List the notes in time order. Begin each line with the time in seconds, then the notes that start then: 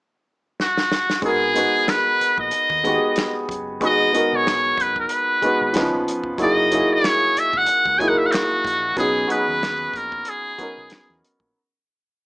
0.60 F#4, snare
0.77 snare
0.92 snare
1.10 snare
1.22 G#1 G#3 B3 D#4 F#4 G#4, kick, closed hi-hat
1.26 A#4
1.54 G#3 B3 D#4 F#4, closed hi-hat
1.58 B4
1.74 muted fingered electric bass stroke
1.88 B4, finger snap, snare, closed hi-hat
2.21 muted fingered electric bass stroke, closed hi-hat
2.38 A#1 D#5, kick
2.51 muted fingered electric bass stroke, closed hi-hat
2.70 D#2, kick
2.84 G#3 B3 D#4 F#4, kick, closed hi-hat
2.88 G4
2.94 G#4
3.16 finger snap, snare, closed hi-hat
3.49 F#1, kick, closed hi-hat
3.80 G#1 G#3 B3 D#4 F#4 G#4, kick, closed hi-hat
3.85 D#5
4.12 G#3 B3 D#4 F#4, closed hi-hat
4.17 A#4
4.33 B1 C#5
4.47 finger snap, snare, closed hi-hat
4.78 F#1 B4, kick, closed hi-hat
4.96 B4, kick
5.09 closed hi-hat
5.42 G#3 B3 D#4 F#4, muted fingered electric bass stroke, kick, closed hi-hat
5.46 B4
5.61 G#1
5.73 C#2 E3 B3 C#4 D#4, finger snap, snare, closed hi-hat
5.77 F3 B4
5.94 A#1
6.08 closed hi-hat
6.24 F1, kick
6.38 F#1 F#3 A#3 D#4 E4, kick, closed hi-hat
6.43 G#4 D#5
6.71 F#3 A#3 D#4 E4, closed hi-hat
6.75 G#4
6.91 C#5, muted fingered electric bass stroke
7.04 finger snap, snare, closed hi-hat
7.37 E5, muted fingered electric bass stroke, closed hi-hat
7.53 G#1 F#5, kick
7.66 muted fingered electric bass stroke, closed hi-hat
7.86 C#2, kick
7.98 F#3 A#3 D#4 E4 G#5, kick, closed hi-hat
8.03 G#4
8.08 A#4 F#5
8.18 E5
8.26 F#5
8.32 F#4, finger snap, snare, closed hi-hat
8.65 A#1, kick, closed hi-hat
8.96 B1 F#3 B3 C#4 D#4 G#4, kick, closed hi-hat
9.27 F#3 B3 C#4 D#4 B4, closed hi-hat
9.32 G#4
9.48 D#2
9.63 finger snap, snare, closed hi-hat
9.94 A#1 A#4, kick, closed hi-hat
10.12 kick
10.25 G#4, closed hi-hat
10.58 F#3 B3 C#4 D#4, muted fingered electric bass stroke, kick, closed hi-hat
10.62 A#4
10.77 B1
10.90 finger snap, snare, closed hi-hat
11.10 E2
11.25 closed hi-hat
11.40 A#1, kick